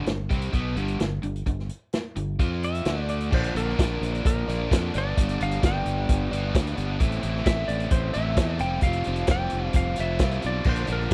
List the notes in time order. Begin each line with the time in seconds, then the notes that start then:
0.06 G1 G2 D3, snare, closed hi-hat
0.29 C2 C3 G3 C4, kick, closed hi-hat
0.42 closed hi-hat
0.52 B1 B2 F#3 B3, kick, closed hi-hat
0.76 G1 G2 D3 G3, closed hi-hat
0.88 closed hi-hat
1.00 G1 G2 D3, snare, closed hi-hat
1.23 G1 G2 D3, closed hi-hat
1.36 closed hi-hat
1.46 G1 G2 D3, kick, closed hi-hat
1.59 snare
1.69 closed hi-hat
1.93 snare, closed hi-hat
2.16 G1 G2 D3, closed hi-hat
2.39 F2 F3 C4 F4, kick, closed hi-hat
2.63 E5, closed hi-hat
2.75 closed hi-hat
2.85 D2 D3 A3 D4, snare, closed hi-hat
3.09 D5, closed hi-hat
3.20 closed hi-hat
3.31 A#1 A#2 D3 F3 A#3 D4 C5, kick, crash
3.44 closed hi-hat
3.55 A#1 F3 A#3 D4 A#4, closed hi-hat
3.69 snare
3.77 A#1 D3 F3 A#3 D4, kick, snare, closed hi-hat
4.01 A#1, closed hi-hat
4.15 closed hi-hat
4.25 A#1 A#4, kick, closed hi-hat
4.48 A#1 F3 A#3 D4, closed hi-hat
4.70 F2 A#2 D3 F3 A#3 D4 A4, kick, snare, closed hi-hat
4.94 G1 G2 D3 G3 B3 D4, closed hi-hat
4.98 D5
5.16 G1 G2 D3 G3 B3 D4, kick, closed hi-hat
5.29 closed hi-hat
5.40 G1 G3 B3 D4 F5, closed hi-hat
5.51 snare, closed hi-hat
5.62 G1 D3 G3 B3 D4 G5, kick, snare, closed hi-hat
5.86 G1, closed hi-hat
6.09 G1, kick, closed hi-hat
6.31 G1 G3 B3 D4, closed hi-hat
6.41 F5
6.53 D2 G2 D3 G3 B3 D4, kick, snare, closed hi-hat
6.67 closed hi-hat
6.75 G1 G3 B3 D4, closed hi-hat
6.99 A1 A2 E3 A3 C4 E4, kick, closed hi-hat
7.12 closed hi-hat
7.22 A1 A3 C4 E4, closed hi-hat
7.36 snare
7.44 A1 E3 A3 C4 E4 E5, kick, snare, closed hi-hat
7.68 A1 D5, closed hi-hat
7.80 closed hi-hat
7.91 A1 C5, kick, closed hi-hat
8.13 A1 A3 C4 E4 E5, closed hi-hat
8.37 E2 A2 E3 A3 C4 E4, kick, snare, closed hi-hat
8.59 F1 F3 G3 C4 F4 G5, closed hi-hat
8.81 F1 F3 G3 F5, kick, closed hi-hat
8.86 C4 F4
8.93 closed hi-hat
9.04 F1 C4 F4, closed hi-hat
9.08 G3
9.16 closed hi-hat
9.27 F1 F3 G3 C4, kick, snare, closed hi-hat
9.31 F4 G5
9.50 F1, closed hi-hat
9.73 F1 F5, kick, closed hi-hat
9.96 F1 C4 F4, closed hi-hat
10.00 G3 E5
10.19 C2 F3 G3 C4 F4, kick, snare, closed hi-hat
10.31 closed hi-hat
10.42 B1 G3 C4 F4, closed hi-hat
10.47 D5
10.64 A#1 A#2 D3 F3 A#3, kick, crash
10.69 D4 C5
10.76 closed hi-hat
10.87 A#1 F3 A#3 D4, closed hi-hat
10.93 A#4
11.00 snare
11.11 closed hi-hat